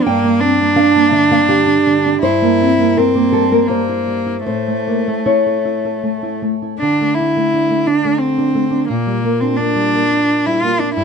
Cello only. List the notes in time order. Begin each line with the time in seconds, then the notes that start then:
0.04 A#3
0.40 D4
2.22 E4
2.98 C4
3.68 A#3
4.46 A3
6.79 D4
7.15 E4
7.87 D4
8.19 C4
8.88 A#3
9.40 C4
9.57 D4
10.46 E4
10.62 F4
10.80 D4
10.94 E4